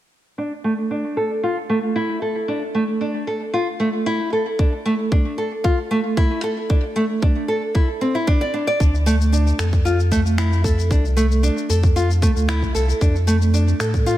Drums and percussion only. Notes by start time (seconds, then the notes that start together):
4.59 kick
5.12 kick
5.65 kick
6.17 kick
6.70 kick
7.22 kick
7.75 kick
8.28 kick
8.80 kick, shaker
8.95 shaker
9.07 shaker
9.21 shaker
9.34 shaker
9.47 shaker
9.59 finger snap, shaker
9.73 kick, shaker
9.86 shaker
10.00 shaker
10.12 kick, shaker
10.26 shaker
10.38 finger snap, shaker
10.53 shaker
10.64 kick, shaker
10.79 shaker
10.91 kick, shaker
11.05 shaker
11.18 shaker
11.31 shaker
11.44 shaker
11.58 shaker
11.70 shaker
11.83 kick, shaker
11.97 shaker
12.10 shaker
12.22 kick, shaker
12.37 shaker
12.49 finger snap, shaker
12.62 kick, shaker
12.75 shaker
12.89 shaker
13.01 kick, shaker
13.16 shaker
13.28 shaker
13.42 shaker
13.54 shaker
13.68 shaker
13.80 finger snap, shaker
13.94 kick, shaker
14.07 shaker